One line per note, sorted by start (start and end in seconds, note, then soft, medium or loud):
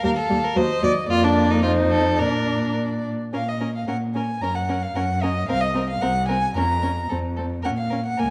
0.00 0.12 G3 medium
0.00 0.59 F5 medium
0.05 0.13 D#2 medium
0.05 0.10 A#4 loud
0.17 0.46 A4 medium
0.30 0.39 D#2 medium
0.30 0.38 G3 medium
0.45 0.58 A#4 medium
0.56 0.65 D#2 medium
0.56 0.64 F#3 medium
0.56 0.83 C5 medium
0.56 1.09 D#5 medium
0.83 0.91 D#2 medium
0.83 0.91 F#3 medium
0.83 0.91 D5 loud
1.09 2.20 F2 medium
1.09 1.65 A#3 medium
1.09 1.25 F4 loud
1.09 1.66 D5 medium
1.24 1.52 D4 medium
1.51 1.62 D#4 medium
1.63 2.20 D#4 medium
1.63 1.71 F4 medium
1.63 2.19 C5 medium
1.91 2.21 A4 medium
2.19 3.12 A#2 medium
2.19 3.12 D4 medium
2.19 2.76 A#4 medium
2.19 3.03 D5 medium
3.33 3.82 A#2 soft
3.33 3.41 C#4 soft
3.33 3.42 A#4 soft
3.33 3.50 F5 medium
3.48 3.75 D#5 medium
3.60 3.68 C#4 soft
3.60 3.68 A#4 soft
3.75 3.88 F5 soft
3.88 4.36 A#2 soft
3.88 3.96 C#4 soft
3.88 3.96 A#4 soft
3.88 3.96 F#5 soft
4.15 4.23 C#4 soft
4.15 4.24 A#4 soft
4.15 4.43 G#5 medium
4.41 4.89 F#2 soft
4.41 4.50 C#4 soft
4.41 4.51 A#4 medium
4.41 4.57 A#5 medium
4.55 4.84 F#5 medium
4.69 4.77 C#4 soft
4.69 4.77 A#4 soft
4.82 4.97 F5 medium
4.95 5.42 F#2 medium
4.95 5.04 C#4 soft
4.95 5.04 A#4 soft
4.95 5.23 F#5 medium
5.22 5.31 C#4 soft
5.22 5.31 A#4 soft
5.22 5.48 D#5 medium
5.48 5.95 C2 medium
5.48 5.57 C4 medium
5.48 5.57 A#4 medium
5.48 5.62 F5 medium
5.61 5.88 D#5 medium
5.75 5.83 C4 medium
5.75 5.83 A#4 medium
5.90 6.03 F5 medium
6.01 6.49 C2 medium
6.01 6.10 C4 medium
6.01 6.10 A#4 medium
6.01 6.28 F#5 medium
6.28 6.37 C4 soft
6.28 6.36 A#4 soft
6.28 6.55 G#5 medium
6.55 7.03 F2 medium
6.55 6.65 C#4 medium
6.55 6.63 A#4 medium
6.55 7.09 A#5 medium
6.82 6.91 C#4 soft
6.82 6.90 A#4 soft
7.09 7.58 F2 soft
7.09 7.19 C4 soft
7.09 7.17 A4 soft
7.37 7.46 C4 soft
7.37 7.45 A4 soft
7.63 8.12 A#2 medium
7.63 7.73 C#4 soft
7.63 7.71 A#4 soft
7.63 7.70 F#5 medium
7.78 8.05 F5 medium
7.90 8.00 C#4 soft
7.90 7.98 A#4 soft
8.06 8.21 F#5 medium
8.17 8.30 C#2 medium
8.17 8.27 A#3 soft
8.17 8.25 A#4 soft
8.17 8.30 G#5 medium